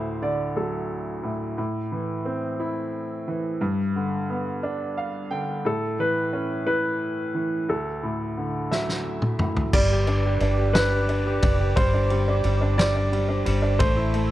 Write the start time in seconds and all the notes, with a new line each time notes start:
Already playing: D2 A2 C5
0.22 D3 D5
0.56 F#3 A4
1.23 A2
1.58 A2
1.92 E3
2.25 C4
2.60 E4
3.28 E3
3.61 G2
3.96 D3
4.30 B3
4.63 D4
4.97 F5
5.31 D3 G5
5.65 A2 A4
5.99 E3 B4
6.33 C#4
6.67 E4 B4
7.34 E3
7.69 D2 A4
8.03 A2
8.37 D3
8.71 F#3 E5, snare
8.89 snare
9.22 mid tom
9.39 A2, mid tom
9.57 floor tom
9.73 G1 G3 B4 D5 G5 D6, kick, crash
9.91 G4
10.07 D4, ride
10.25 G4
10.40 G1 D4, ride
10.58 G4
10.73 D4 B4, snare, ride
10.92 G4
11.09 D4, ride
11.26 G4
11.42 F#1 D4, kick, ride
11.60 G4
11.76 G1 G3 C5, kick, ride
11.94 D4
12.10 G3, ride
12.28 D4
12.44 G1 G3, ride
12.61 D4
12.78 G3 D5, snare, ride
12.95 D4
13.12 G3, ride
13.29 D4
13.45 G1 G3, ride
13.62 D4
13.79 A1 A3 C5 E5 A5 E6, kick, ride
13.96 E4
14.14 A3, ride